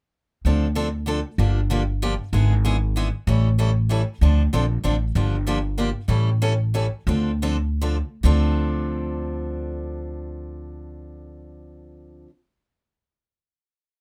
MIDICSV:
0, 0, Header, 1, 3, 480
1, 0, Start_track
1, 0, Key_signature, -1, "minor"
1, 0, Tempo, 312989
1, 702, Time_signature, 3, 2, 24, 8
1, 9821, Tempo, 340909
1, 11261, Tempo, 405954
1, 12221, Tempo, 448096
1, 18399, End_track
2, 0, Start_track
2, 0, Title_t, "Steel-string acoustic guitar"
2, 0, Program_c, 0, 25
2, 699, Note_on_c, 0, 50, 67
2, 707, Note_on_c, 0, 53, 67
2, 713, Note_on_c, 0, 60, 61
2, 713, Note_on_c, 0, 62, 67
2, 724, Note_on_c, 0, 69, 72
2, 1008, Note_off_c, 0, 50, 0
2, 1012, Note_off_c, 0, 53, 0
2, 1015, Note_off_c, 0, 60, 0
2, 1015, Note_off_c, 0, 62, 0
2, 1021, Note_off_c, 0, 69, 0
2, 1155, Note_on_c, 0, 50, 75
2, 1160, Note_on_c, 0, 53, 76
2, 1166, Note_on_c, 0, 69, 86
2, 1167, Note_on_c, 0, 60, 80
2, 1169, Note_on_c, 0, 62, 89
2, 1337, Note_off_c, 0, 50, 0
2, 1339, Note_off_c, 0, 53, 0
2, 1342, Note_off_c, 0, 60, 0
2, 1342, Note_off_c, 0, 69, 0
2, 1343, Note_off_c, 0, 62, 0
2, 1625, Note_on_c, 0, 50, 74
2, 1640, Note_on_c, 0, 53, 76
2, 1650, Note_on_c, 0, 60, 81
2, 1651, Note_on_c, 0, 62, 74
2, 1655, Note_on_c, 0, 69, 86
2, 1812, Note_off_c, 0, 50, 0
2, 1819, Note_off_c, 0, 53, 0
2, 1824, Note_off_c, 0, 60, 0
2, 1825, Note_off_c, 0, 62, 0
2, 1827, Note_off_c, 0, 69, 0
2, 2128, Note_on_c, 0, 50, 65
2, 2131, Note_on_c, 0, 53, 61
2, 2139, Note_on_c, 0, 58, 69
2, 2140, Note_on_c, 0, 67, 65
2, 2141, Note_on_c, 0, 62, 67
2, 2443, Note_off_c, 0, 50, 0
2, 2445, Note_off_c, 0, 53, 0
2, 2449, Note_off_c, 0, 58, 0
2, 2449, Note_off_c, 0, 67, 0
2, 2450, Note_off_c, 0, 62, 0
2, 2605, Note_on_c, 0, 50, 84
2, 2618, Note_on_c, 0, 58, 89
2, 2619, Note_on_c, 0, 53, 87
2, 2629, Note_on_c, 0, 62, 81
2, 2630, Note_on_c, 0, 67, 81
2, 2782, Note_off_c, 0, 50, 0
2, 2788, Note_off_c, 0, 58, 0
2, 2789, Note_off_c, 0, 53, 0
2, 2794, Note_off_c, 0, 62, 0
2, 2794, Note_off_c, 0, 67, 0
2, 3100, Note_on_c, 0, 50, 72
2, 3101, Note_on_c, 0, 53, 78
2, 3106, Note_on_c, 0, 67, 86
2, 3108, Note_on_c, 0, 58, 85
2, 3108, Note_on_c, 0, 62, 78
2, 3269, Note_off_c, 0, 50, 0
2, 3269, Note_off_c, 0, 53, 0
2, 3272, Note_off_c, 0, 67, 0
2, 3273, Note_off_c, 0, 58, 0
2, 3273, Note_off_c, 0, 62, 0
2, 3573, Note_on_c, 0, 56, 66
2, 3574, Note_on_c, 0, 50, 66
2, 3587, Note_on_c, 0, 64, 80
2, 3590, Note_on_c, 0, 59, 67
2, 3592, Note_on_c, 0, 68, 76
2, 3885, Note_off_c, 0, 56, 0
2, 3886, Note_off_c, 0, 50, 0
2, 3892, Note_off_c, 0, 64, 0
2, 3894, Note_off_c, 0, 59, 0
2, 3894, Note_off_c, 0, 68, 0
2, 4058, Note_on_c, 0, 50, 82
2, 4058, Note_on_c, 0, 56, 74
2, 4069, Note_on_c, 0, 68, 88
2, 4073, Note_on_c, 0, 59, 84
2, 4073, Note_on_c, 0, 64, 86
2, 4228, Note_off_c, 0, 50, 0
2, 4228, Note_off_c, 0, 56, 0
2, 4233, Note_off_c, 0, 68, 0
2, 4235, Note_off_c, 0, 59, 0
2, 4235, Note_off_c, 0, 64, 0
2, 4537, Note_on_c, 0, 50, 81
2, 4549, Note_on_c, 0, 56, 79
2, 4553, Note_on_c, 0, 64, 88
2, 4554, Note_on_c, 0, 59, 87
2, 4558, Note_on_c, 0, 68, 83
2, 4706, Note_off_c, 0, 50, 0
2, 4712, Note_off_c, 0, 56, 0
2, 4715, Note_off_c, 0, 59, 0
2, 4715, Note_off_c, 0, 64, 0
2, 4717, Note_off_c, 0, 68, 0
2, 5018, Note_on_c, 0, 52, 72
2, 5035, Note_on_c, 0, 61, 76
2, 5038, Note_on_c, 0, 55, 67
2, 5042, Note_on_c, 0, 64, 69
2, 5046, Note_on_c, 0, 69, 70
2, 5327, Note_off_c, 0, 52, 0
2, 5335, Note_off_c, 0, 61, 0
2, 5336, Note_off_c, 0, 55, 0
2, 5338, Note_off_c, 0, 64, 0
2, 5340, Note_off_c, 0, 69, 0
2, 5498, Note_on_c, 0, 52, 78
2, 5504, Note_on_c, 0, 61, 88
2, 5506, Note_on_c, 0, 55, 75
2, 5507, Note_on_c, 0, 64, 82
2, 5513, Note_on_c, 0, 69, 84
2, 5666, Note_off_c, 0, 52, 0
2, 5669, Note_off_c, 0, 61, 0
2, 5670, Note_off_c, 0, 55, 0
2, 5671, Note_off_c, 0, 64, 0
2, 5674, Note_off_c, 0, 69, 0
2, 5970, Note_on_c, 0, 52, 73
2, 5982, Note_on_c, 0, 55, 77
2, 5988, Note_on_c, 0, 64, 77
2, 5991, Note_on_c, 0, 61, 80
2, 6005, Note_on_c, 0, 69, 75
2, 6142, Note_off_c, 0, 52, 0
2, 6148, Note_off_c, 0, 55, 0
2, 6151, Note_off_c, 0, 64, 0
2, 6153, Note_off_c, 0, 61, 0
2, 6159, Note_off_c, 0, 69, 0
2, 6462, Note_on_c, 0, 50, 62
2, 6479, Note_on_c, 0, 62, 70
2, 6483, Note_on_c, 0, 53, 64
2, 6487, Note_on_c, 0, 60, 66
2, 6489, Note_on_c, 0, 69, 70
2, 6767, Note_off_c, 0, 50, 0
2, 6776, Note_off_c, 0, 62, 0
2, 6778, Note_off_c, 0, 53, 0
2, 6780, Note_off_c, 0, 60, 0
2, 6781, Note_off_c, 0, 69, 0
2, 6945, Note_on_c, 0, 50, 76
2, 6953, Note_on_c, 0, 60, 85
2, 6957, Note_on_c, 0, 53, 81
2, 6961, Note_on_c, 0, 62, 85
2, 6975, Note_on_c, 0, 69, 82
2, 7109, Note_off_c, 0, 50, 0
2, 7113, Note_off_c, 0, 60, 0
2, 7115, Note_off_c, 0, 53, 0
2, 7117, Note_off_c, 0, 62, 0
2, 7124, Note_off_c, 0, 69, 0
2, 7416, Note_on_c, 0, 50, 78
2, 7421, Note_on_c, 0, 53, 77
2, 7430, Note_on_c, 0, 60, 86
2, 7432, Note_on_c, 0, 69, 75
2, 7435, Note_on_c, 0, 62, 80
2, 7584, Note_off_c, 0, 50, 0
2, 7586, Note_off_c, 0, 53, 0
2, 7591, Note_off_c, 0, 60, 0
2, 7592, Note_off_c, 0, 69, 0
2, 7593, Note_off_c, 0, 62, 0
2, 7902, Note_on_c, 0, 50, 62
2, 7907, Note_on_c, 0, 58, 61
2, 7914, Note_on_c, 0, 53, 67
2, 7915, Note_on_c, 0, 62, 72
2, 7924, Note_on_c, 0, 67, 74
2, 8206, Note_off_c, 0, 50, 0
2, 8209, Note_off_c, 0, 58, 0
2, 8212, Note_off_c, 0, 53, 0
2, 8213, Note_off_c, 0, 62, 0
2, 8217, Note_off_c, 0, 67, 0
2, 8382, Note_on_c, 0, 50, 76
2, 8389, Note_on_c, 0, 53, 85
2, 8392, Note_on_c, 0, 58, 89
2, 8398, Note_on_c, 0, 62, 93
2, 8406, Note_on_c, 0, 67, 85
2, 8546, Note_off_c, 0, 50, 0
2, 8550, Note_off_c, 0, 53, 0
2, 8551, Note_off_c, 0, 58, 0
2, 8554, Note_off_c, 0, 62, 0
2, 8558, Note_off_c, 0, 67, 0
2, 8858, Note_on_c, 0, 50, 82
2, 8865, Note_on_c, 0, 53, 80
2, 8865, Note_on_c, 0, 58, 86
2, 8875, Note_on_c, 0, 62, 79
2, 8888, Note_on_c, 0, 67, 84
2, 9024, Note_off_c, 0, 50, 0
2, 9027, Note_off_c, 0, 58, 0
2, 9028, Note_off_c, 0, 53, 0
2, 9033, Note_off_c, 0, 62, 0
2, 9039, Note_off_c, 0, 67, 0
2, 9322, Note_on_c, 0, 52, 63
2, 9333, Note_on_c, 0, 61, 70
2, 9335, Note_on_c, 0, 64, 70
2, 9341, Note_on_c, 0, 55, 73
2, 9354, Note_on_c, 0, 69, 73
2, 9638, Note_off_c, 0, 52, 0
2, 9643, Note_off_c, 0, 61, 0
2, 9644, Note_off_c, 0, 64, 0
2, 9647, Note_off_c, 0, 55, 0
2, 9654, Note_off_c, 0, 69, 0
2, 9838, Note_on_c, 0, 52, 85
2, 9841, Note_on_c, 0, 55, 77
2, 9843, Note_on_c, 0, 64, 99
2, 9845, Note_on_c, 0, 61, 90
2, 9852, Note_on_c, 0, 69, 85
2, 9986, Note_off_c, 0, 52, 0
2, 9988, Note_off_c, 0, 55, 0
2, 9988, Note_off_c, 0, 64, 0
2, 9989, Note_off_c, 0, 61, 0
2, 9993, Note_off_c, 0, 69, 0
2, 10293, Note_on_c, 0, 52, 76
2, 10300, Note_on_c, 0, 61, 74
2, 10302, Note_on_c, 0, 55, 84
2, 10310, Note_on_c, 0, 64, 73
2, 10312, Note_on_c, 0, 69, 85
2, 10448, Note_off_c, 0, 52, 0
2, 10452, Note_off_c, 0, 61, 0
2, 10453, Note_off_c, 0, 55, 0
2, 10457, Note_off_c, 0, 64, 0
2, 10457, Note_off_c, 0, 69, 0
2, 10765, Note_on_c, 0, 50, 63
2, 10773, Note_on_c, 0, 53, 69
2, 10781, Note_on_c, 0, 62, 64
2, 10783, Note_on_c, 0, 60, 75
2, 10784, Note_on_c, 0, 69, 80
2, 11079, Note_off_c, 0, 50, 0
2, 11083, Note_off_c, 0, 53, 0
2, 11087, Note_off_c, 0, 62, 0
2, 11088, Note_off_c, 0, 60, 0
2, 11088, Note_off_c, 0, 69, 0
2, 11253, Note_on_c, 0, 50, 81
2, 11259, Note_on_c, 0, 53, 82
2, 11262, Note_on_c, 0, 62, 81
2, 11264, Note_on_c, 0, 60, 88
2, 11266, Note_on_c, 0, 69, 97
2, 11412, Note_off_c, 0, 50, 0
2, 11414, Note_off_c, 0, 53, 0
2, 11416, Note_off_c, 0, 62, 0
2, 11417, Note_off_c, 0, 60, 0
2, 11418, Note_off_c, 0, 69, 0
2, 11720, Note_on_c, 0, 50, 74
2, 11720, Note_on_c, 0, 53, 86
2, 11728, Note_on_c, 0, 62, 77
2, 11730, Note_on_c, 0, 60, 75
2, 11731, Note_on_c, 0, 69, 83
2, 11888, Note_off_c, 0, 50, 0
2, 11888, Note_off_c, 0, 53, 0
2, 11892, Note_off_c, 0, 62, 0
2, 11893, Note_off_c, 0, 60, 0
2, 11894, Note_off_c, 0, 69, 0
2, 12214, Note_on_c, 0, 50, 86
2, 12227, Note_on_c, 0, 53, 80
2, 12234, Note_on_c, 0, 60, 88
2, 12237, Note_on_c, 0, 62, 83
2, 12245, Note_on_c, 0, 69, 85
2, 16544, Note_off_c, 0, 50, 0
2, 16557, Note_off_c, 0, 53, 0
2, 16564, Note_off_c, 0, 60, 0
2, 16567, Note_off_c, 0, 62, 0
2, 16575, Note_off_c, 0, 69, 0
2, 18399, End_track
3, 0, Start_track
3, 0, Title_t, "Upright bass"
3, 0, Program_c, 1, 32
3, 686, Note_on_c, 1, 38, 80
3, 1846, Note_off_c, 1, 38, 0
3, 2121, Note_on_c, 1, 31, 86
3, 3282, Note_off_c, 1, 31, 0
3, 3568, Note_on_c, 1, 32, 87
3, 4725, Note_off_c, 1, 32, 0
3, 5016, Note_on_c, 1, 33, 90
3, 6168, Note_off_c, 1, 33, 0
3, 6461, Note_on_c, 1, 38, 84
3, 6844, Note_off_c, 1, 38, 0
3, 6949, Note_on_c, 1, 34, 80
3, 7352, Note_off_c, 1, 34, 0
3, 7429, Note_on_c, 1, 33, 69
3, 7832, Note_off_c, 1, 33, 0
3, 7903, Note_on_c, 1, 31, 88
3, 9052, Note_off_c, 1, 31, 0
3, 9330, Note_on_c, 1, 33, 88
3, 10475, Note_off_c, 1, 33, 0
3, 10754, Note_on_c, 1, 38, 93
3, 11943, Note_off_c, 1, 38, 0
3, 12221, Note_on_c, 1, 38, 86
3, 16508, Note_off_c, 1, 38, 0
3, 18399, End_track
0, 0, End_of_file